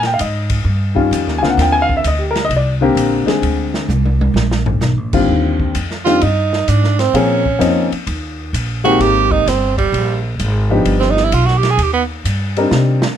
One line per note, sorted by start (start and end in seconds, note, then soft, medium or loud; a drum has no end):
0.00 0.17 A#2 medium
0.00 snare soft
0.00 ride soft
0.07 0.15 G5 medium
0.14 0.19 F5 medium
0.19 0.64 G#2 medium
0.19 0.93 D#5 medium
0.19 hi-hat pedal medium
0.19 ride medium
0.50 kick medium
0.50 ride medium
0.64 1.10 G2 medium
0.95 1.39 D#3 medium
0.95 1.39 G3 medium
0.95 1.39 C#4 medium
0.95 1.39 F4 medium
0.95 kick soft
1.11 1.27 F2 medium
1.11 hi-hat pedal medium
1.11 ride medium
1.27 1.41 D#2 medium
1.27 snare soft
1.38 1.57 C#2 medium
1.38 2.01 D3 medium
1.38 1.48 G#5 medium
1.43 2.01 A#3 medium
1.43 2.02 C4 medium
1.43 2.01 F4 medium
1.43 snare soft
1.50 1.58 F#5 medium
1.57 2.03 D#2 loud
1.57 snare soft
1.57 ride medium
1.61 1.75 G5 medium
1.72 1.88 G#5 loud
1.82 1.93 F5 loud
1.89 kick medium
1.97 2.04 E5 medium
2.04 2.49 D2 loud
2.04 2.21 D#5 medium
2.04 hi-hat pedal medium
2.04 ride medium
2.19 2.34 G4 medium
2.31 2.40 A#4 medium
2.35 snare medium
2.35 ride medium
2.45 2.51 D#5 loud
2.49 2.94 C2 medium
2.49 ride medium
2.56 2.73 D5 medium
2.81 3.25 D3 medium
2.81 3.25 A#3 medium
2.81 3.25 C4 medium
2.81 3.25 G4 medium
2.95 3.25 A#1 medium
2.95 hi-hat pedal medium
2.95 ride medium
3.26 3.86 D3 medium
3.26 3.86 G#3 medium
3.26 3.86 C4 medium
3.26 3.87 G#4 medium
3.26 muted upright bass stroke soft
3.26 snare medium
3.26 ride soft
3.42 3.88 D2 medium
3.42 ride medium
3.74 snare medium
3.89 4.33 C2 medium
3.89 hi-hat pedal medium
3.89 high tom medium
4.06 high tom medium
4.21 high tom medium
4.34 4.80 A#1 loud
4.34 snare medium
4.51 snare medium
4.66 floor tom medium
4.81 4.97 B1 medium
4.81 snare medium
4.81 hi-hat pedal medium
4.97 5.13 A#1 medium
5.13 5.28 G#1 medium
5.13 5.72 D#2 medium
5.13 5.72 D3 medium
5.13 5.72 G3 medium
5.13 5.73 C4 medium
5.13 5.73 F4 medium
5.13 kick medium
5.13 crash medium
5.29 5.74 D#2 medium
5.60 kick medium
5.75 6.20 F2 medium
5.75 hi-hat pedal medium
5.75 ride medium
5.91 snare soft
6.05 6.20 D#3 medium
6.05 6.20 G3 medium
6.05 6.20 C4 medium
6.05 6.21 D4 medium
6.05 6.24 F4 medium
6.05 6.21 F4 medium
6.05 snare soft
6.05 ride soft
6.21 6.67 G2 medium
6.21 6.70 D#4 medium
6.21 ride medium
6.53 snare soft
6.68 7.13 G#2 medium
6.68 7.01 D4 medium
6.68 hi-hat pedal medium
6.68 ride medium
6.84 snare soft
6.99 7.18 C4 medium
6.99 snare soft
6.99 ride soft
7.13 7.59 A#2 medium
7.13 7.42 F3 medium
7.13 7.42 A#3 medium
7.13 7.43 C4 medium
7.13 7.43 C#4 medium
7.13 7.93 C#4 medium
7.13 7.43 G#4 medium
7.13 ride medium
7.46 kick soft
7.59 7.89 F2 medium
7.59 7.88 F3 medium
7.59 7.88 A#3 medium
7.59 7.88 C4 medium
7.59 7.89 C#4 medium
7.59 7.89 D#4 medium
7.59 hi-hat pedal medium
7.59 ride medium
7.92 muted upright bass stroke soft
7.92 ride medium
8.07 8.52 D#2 medium
8.07 ride medium
8.53 8.99 A#1 medium
8.53 hi-hat pedal medium
8.53 ride medium
8.84 9.43 D#3 medium
8.84 9.43 G#3 medium
8.84 9.44 A#3 medium
8.84 9.44 C4 medium
8.84 9.03 F#4 medium
8.84 9.44 G4 medium
8.84 ride soft
8.99 9.45 G#1 medium
8.99 9.33 G4 loud
8.99 ride medium
9.32 9.50 D#4 medium
9.32 kick medium
9.46 9.92 G1 medium
9.46 9.77 C4 medium
9.46 snare soft
9.46 hi-hat pedal medium
9.46 ride medium
9.78 10.21 G3 medium
9.78 kick medium
9.78 ride soft
9.92 10.38 A#1 medium
9.92 ride medium
10.39 10.85 G#1 medium
10.39 hi-hat pedal medium
10.39 ride medium
10.70 11.29 F3 medium
10.70 11.30 B3 medium
10.70 11.30 D4 medium
10.70 11.30 D#4 medium
10.70 11.30 G4 medium
10.85 11.31 G1 medium
10.85 ride medium
11.00 11.12 C4 medium
11.00 snare soft
11.10 11.26 D#4 medium
11.17 snare soft
11.24 11.36 E4 medium
11.32 11.77 B1 medium
11.32 11.47 F4 medium
11.32 hi-hat pedal medium
11.32 ride medium
11.45 11.59 F#4 medium
11.45 snare soft
11.58 11.72 G4 medium
11.63 snare soft
11.63 ride medium
11.70 11.84 G#4 medium
11.77 12.23 D#2 medium
11.77 ride medium
11.82 11.93 G4 medium
11.93 12.03 B3 medium
12.24 12.70 G2 medium
12.24 hi-hat pedal medium
12.24 ride medium
12.57 13.03 G3 medium
12.57 13.03 C4 medium
12.57 13.04 D4 medium
12.57 13.03 D#4 medium
12.57 13.04 A#4 medium
12.57 ride soft
12.71 13.01 C3 medium
12.71 snare loud
13.02 snare loud